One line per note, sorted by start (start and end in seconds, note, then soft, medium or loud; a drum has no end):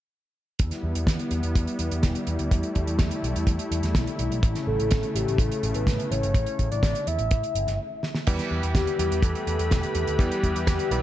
0.59 0.69 E2 loud
0.59 4.39 G3 medium
0.59 2.49 B3 medium
0.59 7.75 E4 medium
0.59 kick loud
0.59 closed hi-hat medium
0.71 snare soft
0.71 closed hi-hat medium
0.83 0.93 E2 medium
0.95 1.05 E2 medium
0.95 closed hi-hat medium
1.07 1.17 E2 medium
1.07 kick loud
1.07 snare loud
1.07 closed hi-hat loud
1.19 closed hi-hat medium
1.31 1.41 E2 medium
1.31 closed hi-hat medium
1.43 1.53 E2 medium
1.43 closed hi-hat medium
1.55 1.65 E2 loud
1.55 kick loud
1.55 closed hi-hat loud
1.67 closed hi-hat medium
1.79 1.89 E2 medium
1.79 closed hi-hat medium
1.91 2.01 E2 medium
1.91 closed hi-hat medium
2.03 2.13 E1 medium
2.03 kick loud
2.03 snare loud
2.03 closed hi-hat loud
2.15 closed hi-hat medium
2.27 2.37 E2 medium
2.27 closed hi-hat medium
2.39 2.49 D2 medium
2.39 closed hi-hat medium
2.51 2.61 E2 loud
2.51 4.41 A3 medium
2.51 kick loud
2.51 closed hi-hat medium
2.63 closed hi-hat soft
2.75 2.86 E2 medium
2.75 kick medium
2.75 closed hi-hat soft
2.87 2.97 E2 medium
2.87 closed hi-hat medium
2.99 3.09 E2 medium
2.99 kick loud
2.99 snare loud
2.99 closed hi-hat medium
3.11 closed hi-hat medium
3.23 3.33 B1 medium
3.23 closed hi-hat medium
3.35 3.45 E2 medium
3.35 closed hi-hat medium
3.47 3.57 E2 loud
3.47 kick loud
3.47 closed hi-hat loud
3.59 closed hi-hat medium
3.71 3.81 E2 medium
3.71 closed hi-hat medium
3.83 3.93 E2 medium
3.83 snare soft
3.83 closed hi-hat medium
3.95 4.05 B1 medium
3.95 kick loud
3.95 snare loud
3.95 closed hi-hat loud
4.07 closed hi-hat medium
4.19 4.29 B1 medium
4.19 closed hi-hat medium
4.31 4.41 B1 medium
4.31 closed hi-hat medium
4.43 4.53 A1 loud
4.43 7.76 C#3 medium
4.43 7.76 A3 medium
4.43 kick loud
4.43 closed hi-hat medium
4.55 snare soft
4.55 closed hi-hat medium
4.67 4.77 A1 medium
4.67 5.17 A4 medium
4.79 4.89 A1 medium
4.79 closed hi-hat soft
4.91 kick loud
4.91 snare loud
4.91 closed hi-hat loud
5.03 closed hi-hat medium
5.15 5.25 A1 medium
5.15 5.41 G4 medium
5.15 closed hi-hat medium
5.27 5.37 A1 medium
5.27 closed hi-hat soft
5.38 5.49 A1 loud
5.38 5.77 A4 loud
5.38 kick loud
5.38 closed hi-hat medium
5.51 closed hi-hat medium
5.63 5.73 A1 medium
5.63 closed hi-hat medium
5.74 5.85 A1 medium
5.74 6.13 B4 medium
5.74 closed hi-hat medium
5.87 5.97 A2 medium
5.87 kick loud
5.87 snare loud
5.87 closed hi-hat medium
6.00 closed hi-hat medium
6.11 6.21 A1 medium
6.11 6.35 C#5 loud
6.11 closed hi-hat medium
6.23 6.33 G1 medium
6.23 closed hi-hat medium
6.34 6.45 A1 loud
6.34 6.69 C#5 loud
6.34 kick loud
6.34 closed hi-hat medium
6.46 closed hi-hat soft
6.59 6.69 A1 medium
6.59 kick medium
6.59 closed hi-hat soft
6.71 6.81 A1 medium
6.71 7.09 D5 loud
6.71 closed hi-hat medium
6.83 6.93 A1 medium
6.83 kick loud
6.83 snare loud
6.83 closed hi-hat loud
6.95 closed hi-hat medium
7.07 7.17 E2 medium
7.07 7.79 E5 loud
7.07 closed hi-hat medium
7.19 7.29 A1 medium
7.19 closed hi-hat soft
7.31 7.41 A2 loud
7.31 kick loud
7.31 closed hi-hat medium
7.44 closed hi-hat medium
7.55 7.65 G1 medium
7.55 closed hi-hat medium
7.67 7.77 G1 medium
7.67 snare soft
7.67 closed hi-hat medium
8.03 snare medium
8.15 snare medium
8.27 8.37 E2 loud
8.27 8.96 E3 medium
8.27 8.96 G3 medium
8.27 8.96 B3 medium
8.27 8.96 G4 loud
8.27 11.02 G4 medium
8.27 11.02 B4 medium
8.27 11.02 E5 medium
8.27 11.02 B5 medium
8.27 kick loud
8.27 closed hi-hat loud
8.27 crash loud
8.39 snare soft
8.39 closed hi-hat medium
8.51 8.61 E2 medium
8.63 8.73 E2 medium
8.63 closed hi-hat medium
8.75 8.85 E2 loud
8.75 9.25 G4 medium
8.75 kick loud
8.75 snare loud
8.75 closed hi-hat loud
8.87 closed hi-hat medium
8.99 9.09 E2 medium
8.99 10.16 E3 medium
8.99 10.16 G3 medium
8.99 10.16 B3 medium
8.99 10.16 G4 medium
8.99 closed hi-hat medium
9.11 9.21 E2 medium
9.11 closed hi-hat medium
9.22 9.33 E2 loud
9.22 10.21 A4 medium
9.22 kick loud
9.22 closed hi-hat loud
9.35 closed hi-hat medium
9.47 9.57 E2 medium
9.47 closed hi-hat medium
9.59 9.69 E2 medium
9.59 closed hi-hat medium
9.71 9.82 E1 loud
9.71 kick loud
9.71 snare loud
9.71 closed hi-hat medium
9.83 closed hi-hat medium
9.95 10.05 E2 medium
9.95 closed hi-hat medium
10.07 10.17 D2 medium
10.07 closed hi-hat medium
10.19 10.29 E2 loud
10.19 10.88 E3 medium
10.19 10.88 G3 medium
10.19 10.88 B3 medium
10.19 10.55 G4 loud
10.19 10.88 G4 loud
10.19 kick loud
10.19 closed hi-hat medium
10.32 closed hi-hat medium
10.43 10.53 E2 medium
10.43 kick medium
10.43 closed hi-hat medium
10.55 10.65 E2 medium
10.55 10.93 G4 medium
10.55 closed hi-hat medium
10.67 10.77 E2 loud
10.67 kick loud
10.67 snare loud
10.67 closed hi-hat loud
10.79 closed hi-hat medium
10.91 11.01 B1 medium
10.91 11.02 E3 medium
10.91 11.02 G3 medium
10.91 11.02 B3 medium
10.91 11.02 G4 medium
10.91 11.02 B4 loud
10.91 closed hi-hat medium